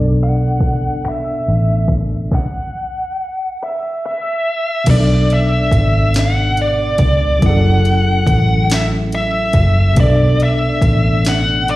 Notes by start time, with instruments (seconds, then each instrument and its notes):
Already playing: fingered electric bass B1, tine electric piano B2 B3 D4 A4 D5
0.23 lead electric guitar F#5
0.60 kick, closed hi-hat
1.03 finger snap, muted fingered electric bass stroke, closed hi-hat
1.09 lead electric guitar E5
1.48 fingered electric bass A1
1.87 kick, closed hi-hat
2.32 lead electric guitar F#5, kick, snare
3.63 lead electric guitar E5
4.06 lead electric guitar E5
4.84 fingered electric bass B1, tine electric piano B2 B3, kick, closed hi-hat, crash
4.89 tine electric piano D4 A4, lead electric guitar D5
4.94 tine electric piano D5
5.30 lead electric guitar E5, closed hi-hat
5.71 fingered electric bass G#1, kick, closed hi-hat
6.14 snare, closed hi-hat
6.19 lead electric guitar F#5
6.57 closed hi-hat
6.62 lead electric guitar D5
6.98 fingered electric bass C#2, kick, closed hi-hat
7.39 tine electric piano F#3 C#4, kick, closed hi-hat
7.43 fingered electric bass F#1, tine electric piano E4 G#4, lead electric guitar F#5
7.49 tine electric piano A4
7.85 closed hi-hat
8.27 fingered electric bass A1, kick, closed hi-hat
8.70 lead electric guitar E5, snare, closed hi-hat
9.12 lead electric guitar E5, closed hi-hat
9.53 fingered electric bass F#1, kick, closed hi-hat
9.94 tine electric piano B2 B3, kick, closed hi-hat
9.98 fingered electric bass B1, tine electric piano D4 A4, lead electric guitar D5
10.03 tine electric piano D5
10.40 lead electric guitar E5, closed hi-hat
10.82 fingered electric bass A1, kick, closed hi-hat
11.25 lead electric guitar F#5, snare, closed hi-hat
11.68 lead electric guitar D5, closed hi-hat